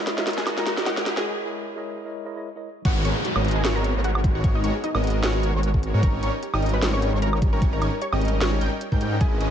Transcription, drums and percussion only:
0.07 snare medium
0.07 closed hi-hat medium
0.18 snare medium
0.27 snare loud
0.27 closed hi-hat medium
0.30 closed hi-hat medium
0.33 closed hi-hat medium
0.38 snare medium
0.47 snare loud
0.47 closed hi-hat medium
0.47 high woodblock medium
0.58 snare medium
0.67 snare loud
0.67 closed hi-hat medium
0.77 snare medium
0.86 snare medium
0.86 closed hi-hat medium
0.97 snare medium
1.06 snare loud
1.06 closed hi-hat medium
1.17 snare medium
2.85 kick loud
2.85 closed hi-hat medium
2.85 crash loud
3.05 closed hi-hat medium
3.25 closed hi-hat medium
3.36 high woodblock medium
3.45 closed hi-hat medium
3.48 closed hi-hat medium
3.51 closed hi-hat medium
3.65 snare loud
3.65 closed hi-hat medium
3.84 closed hi-hat medium
4.04 closed hi-hat medium
4.15 high woodblock medium
4.24 kick loud
4.24 closed hi-hat medium
4.44 kick loud
4.44 closed hi-hat medium
4.64 closed hi-hat medium
4.84 closed hi-hat medium
4.95 high woodblock medium
5.04 closed hi-hat soft
5.07 closed hi-hat medium
5.10 closed hi-hat medium
5.23 snare loud
5.23 closed hi-hat medium
5.43 closed hi-hat medium
5.63 closed hi-hat medium
5.74 kick medium
5.83 closed hi-hat medium
6.03 kick loud
6.03 closed hi-hat medium
6.23 closed hi-hat medium
6.43 closed hi-hat medium
6.54 high woodblock medium
6.63 closed hi-hat soft
6.66 closed hi-hat medium
6.69 closed hi-hat medium
6.82 snare loud
6.82 closed hi-hat medium
7.02 closed hi-hat medium
7.22 closed hi-hat medium
7.33 high woodblock medium
7.42 kick loud
7.42 closed hi-hat medium
7.62 kick loud
7.62 closed hi-hat medium
7.82 closed hi-hat medium
7.82 high woodblock medium
8.02 closed hi-hat medium
8.13 high woodblock medium
8.21 closed hi-hat soft
8.25 closed hi-hat medium
8.28 closed hi-hat medium
8.41 snare loud
8.41 closed hi-hat medium
8.61 closed hi-hat medium
8.81 closed hi-hat medium
8.92 kick medium
9.01 closed hi-hat medium
9.21 kick loud
9.21 closed hi-hat medium
9.41 closed hi-hat medium

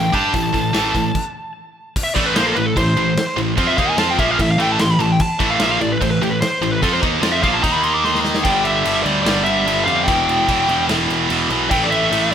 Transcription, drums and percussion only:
0.14 kick loud
0.14 open hi-hat soft
0.34 kick medium
0.34 open hi-hat medium
0.54 kick medium
0.54 open hi-hat medium
0.74 snare loud
0.74 open hi-hat medium
0.95 kick medium
0.95 open hi-hat medium
1.15 kick loud
1.15 crash loud
1.96 kick loud
1.96 crash loud
1.96 crash medium
2.16 kick loud
2.16 crash medium
2.36 snare loud
2.36 crash medium
2.56 crash medium
2.77 kick loud
2.77 crash medium
2.97 crash medium
3.17 snare loud
3.17 crash medium
3.38 crash medium
3.58 kick loud
3.58 crash medium
3.69 snare soft
3.78 kick loud
3.78 crash medium
3.98 snare loud
3.98 crash medium
4.19 kick loud
4.19 crash medium
4.39 kick loud
4.39 crash medium
4.60 crash medium
4.79 snare loud
4.79 crash medium
5.00 crash medium
5.20 kick loud
5.20 crash medium
5.40 kick loud
5.40 crash medium
5.60 snare loud
5.60 crash medium
5.81 crash medium
6.02 kick loud
6.02 crash medium
6.23 crash medium
6.42 snare loud
6.42 crash medium
6.63 crash medium
6.83 kick loud
6.83 crash medium
6.94 snare soft
7.03 kick loud
7.03 crash medium
7.23 snare loud
7.23 crash medium
7.44 kick loud
7.44 crash medium
7.64 kick loud
7.64 crash medium
7.84 crash medium
8.04 snare medium
8.15 snare medium
8.25 snare medium
8.34 snare loud
8.45 kick loud
8.45 crash medium
8.65 crash medium
8.85 snare soft
8.85 crash medium
9.06 crash medium
9.26 snare loud
9.26 crash medium
9.46 crash medium
9.68 crash medium
9.88 crash medium
10.08 kick loud
10.08 crash medium
10.29 crash medium
10.49 kick medium
10.49 crash medium
10.69 crash medium
10.89 snare loud
10.89 crash medium
11.10 crash medium
11.30 crash medium
11.50 crash medium
11.71 kick loud
11.71 crash medium
11.92 crash medium
12.12 snare soft
12.12 crash loud

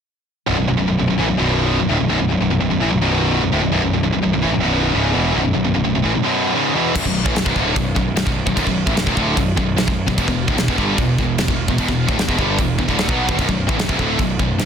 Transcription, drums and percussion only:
6.96 kick loud
6.96 crash loud
6.96 crash medium
7.05 kick medium
7.26 kick medium
7.36 snare loud
7.36 crash medium
7.46 kick loud
7.56 kick medium
7.76 kick medium
7.76 crash medium
7.96 kick medium
8.17 snare loud
8.17 crash medium
8.27 kick loud
8.47 kick medium
8.57 kick loud
8.57 crash medium
8.67 kick medium
8.87 kick medium
8.97 snare loud
8.97 crash medium
9.07 kick medium
9.17 kick medium
9.37 kick loud
9.37 crash medium
9.57 kick medium
9.78 snare loud
9.78 crash medium
9.88 kick loud
10.08 kick medium
10.18 kick loud
10.18 crash medium
10.28 kick medium
10.48 kick medium
10.58 snare loud
10.58 crash medium
10.68 kick loud
10.78 kick medium
10.98 kick medium
10.98 crash medium
11.18 kick medium
11.38 snare loud
11.38 crash medium
11.48 kick loud
11.68 kick loud
11.78 kick medium
11.78 crash medium
11.88 kick medium
12.09 kick loud
12.19 snare loud
12.19 crash medium
12.29 kick loud
12.39 kick medium
12.59 kick medium
12.59 crash medium
12.79 kick medium
12.89 kick medium
12.99 snare loud
12.99 crash medium
13.09 kick loud
13.29 kick loud
13.39 kick loud
13.39 crash medium
13.49 kick medium
13.69 kick loud
13.79 snare loud
13.79 crash medium
13.89 kick loud
13.99 kick medium
14.19 kick medium
14.19 crash medium
14.39 kick medium
14.59 snare loud
14.59 crash medium

